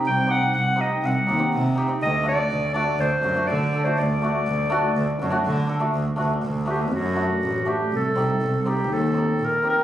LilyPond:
<<
  \new Staff \with { instrumentName = "Clarinet" } { \time 4/4 \tempo 4 = 122 g''8 fis''8 fis''8 ees''8 fis''4 r4 | ees''8 d''4 d''8 c''4 d''8. c''16 | d''2. r4 | r4. g'8 fis'4. g'8 |
a'4~ a'16. a'32 g'8 a'4 bes'8 bes'8 | }
  \new Staff \with { instrumentName = "Hammered dulcimer" } { \time 4/4 r8 <c' ees' g'>16 r8. <c' ees' g'>16 r8. <ees' g'>16 <c' ees' g'>16 r8 <ees' g'>16 <c' ees' g'>16 | r8 <a d' fis'>16 r8. <a d' fis'>16 r8. <d' fis'>16 <a d' fis'>16 r8 <d' a'>16 <a d' fis'>16 | r8 <a d' fis'>16 r8. <a d' fis'>16 r8. <d' fis'>16 <a d' fis'>16 r8 <d' a'>16 <a d' fis'>16 | r8 <a d' fis'>16 r8. <a d' fis'>16 r8. <a d' fis'>16 r8. <a d' fis'>16 r16 |
r8 <c' ees' g'>16 r8. <c' ees' g'>16 r8. <c' ees' g'>16 r8. <c' ees' g'>16 r16 | }
  \new Staff \with { instrumentName = "Double bass" } { \clef bass \time 4/4 c,4 c,4 c,8 ees,8 c4 | d,4 d,4 d,8 fis,8 d4 | d,4 d,4 d,8 fis,8 d4 | d,8 d,8 d,4 fis,4 a,,8 r8 |
c,8 c,8 c,4 ees,4 bes,,8 r8 | }
>>